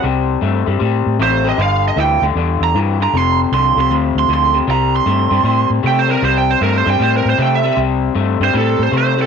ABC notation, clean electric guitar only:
X:1
M:4/4
L:1/8
Q:"Swing" 1/4=155
K:Cmix
V:1 name="Clean electric guitar" clef=bass
[C,G,]2 [C,A,] [C,G,] [C,G,]2 [C,A,] [C,G,] | [G,,D,]2 [G,,E,] [G,,D,] [G,,D,]2 [G,,E,] [G,,D,] | [F,,C,]2 [F,,D,] [F,,C,] [F,,C,]2 [F,,D,] [F,,C,] | [C,G,]2 [C,A,] [C,G,] [C,G,]2 [C,A,] [C,G,] |
[C,G,]2 [C,A,] [C,G,] [C,G,]2 [C,A,] [C,G,] | [C,G,]2 [C,A,] [C,G,] [C,G,]2 [C,A,] [C,G,] |]